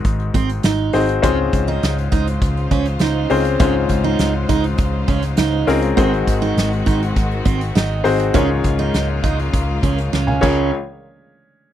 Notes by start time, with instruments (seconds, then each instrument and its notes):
Already playing: grand piano G#2 D#3 C4 D#4 F#4 G#4 C5 D#5
0.05 picked electric bass G#1, kick, closed hi-hat
0.20 closed hi-hat
0.34 picked electric bass G#1, steel-string acoustic guitar C4, kick, closed hi-hat
0.49 closed hi-hat
0.63 picked electric bass G#1, steel-string acoustic guitar D#4, snare, closed hi-hat
0.93 picked electric bass G#1, grand piano C4 D#4 F#4 G#4 C5, snare, open hi-hat
1.09 closed hi-hat
1.22 picked electric bass C#2, grand piano G#2 C4 C#4 F4 G#4 C5, string section C#3 G#3 F4 C5, steel-string acoustic guitar C#4, kick, closed hi-hat
1.53 picked electric bass C#2, kick, closed hi-hat
1.67 steel-string acoustic guitar D#4, closed hi-hat
1.83 picked electric bass C#2, snare, closed hi-hat
1.98 closed hi-hat
2.12 picked electric bass C#2, steel-string acoustic guitar D#4, kick, closed hi-hat
2.27 closed hi-hat
2.42 picked electric bass C#2, kick, closed hi-hat
2.57 closed hi-hat
2.71 picked electric bass C#2, steel-string acoustic guitar C#4, kick, closed hi-hat
2.86 closed hi-hat
2.99 picked electric bass C#2, steel-string acoustic guitar D#4, snare, closed hi-hat
3.30 picked electric bass C#2, grand piano C4 C#4 F4 G#4 C5, open hi-hat
3.45 closed hi-hat
3.60 picked electric bass C#2, grand piano G#2 C4 C#4 F4 G#4 C5, steel-string acoustic guitar C#4, kick, closed hi-hat
3.89 picked electric bass C#2, kick, closed hi-hat
4.04 steel-string acoustic guitar D#4, closed hi-hat
4.19 picked electric bass C#2, snare, closed hi-hat
4.49 picked electric bass C#2, steel-string acoustic guitar D#4, kick, closed hi-hat
4.64 closed hi-hat
4.78 picked electric bass C#2, kick, closed hi-hat
5.08 picked electric bass C#2, steel-string acoustic guitar C#4, kick, closed hi-hat
5.22 closed hi-hat
5.37 picked electric bass C#2, steel-string acoustic guitar D#4, snare, closed hi-hat
5.67 picked electric bass C#2, grand piano C4 C#4 F4 G#4 A#4, snare, open hi-hat
5.82 closed hi-hat
5.97 picked electric bass G#1, grand piano G#2 D#3 C4 D#4 F#4 G#4 C5, string section D#3 C4 F#4, steel-string acoustic guitar C4, kick, closed hi-hat
6.14 closed hi-hat
6.27 picked electric bass G#1, kick, closed hi-hat
6.42 steel-string acoustic guitar D#4, closed hi-hat
6.57 picked electric bass G#1, snare, closed hi-hat
6.73 closed hi-hat
6.86 picked electric bass G#1, steel-string acoustic guitar D#4, kick, closed hi-hat
7.03 closed hi-hat
7.16 picked electric bass G#1, kick, closed hi-hat
7.31 closed hi-hat
7.45 picked electric bass G#1, steel-string acoustic guitar C4, kick, closed hi-hat
7.61 closed hi-hat
7.75 picked electric bass G#1, steel-string acoustic guitar D#4, snare, closed hi-hat
8.04 picked electric bass G#1, grand piano C4 D#4 F#4 G#4 C5, open hi-hat
8.20 closed hi-hat
8.34 picked electric bass C#2, grand piano G#2 C#4 F4 G#4 A#4 C#5, string section C#3 A#3 F4, steel-string acoustic guitar C#4, kick, closed hi-hat
8.64 picked electric bass C#2, kick, closed hi-hat
8.79 steel-string acoustic guitar D#4, closed hi-hat
8.94 picked electric bass C#2, snare, closed hi-hat
9.23 picked electric bass C#2, steel-string acoustic guitar D#4, kick, closed hi-hat
9.39 closed hi-hat
9.53 picked electric bass C#2, kick, closed hi-hat
9.83 picked electric bass C#2, steel-string acoustic guitar C#4, kick, closed hi-hat
9.98 closed hi-hat
10.13 picked electric bass C#2, steel-string acoustic guitar C#4, snare
10.27 grand piano F5 G#5, high tom
10.41 grand piano C#2 F4 G#4 A#4 C#5, picked electric bass C#2, string section C#3 G#3 A#3 F4, steel-string acoustic guitar C#4, kick, crash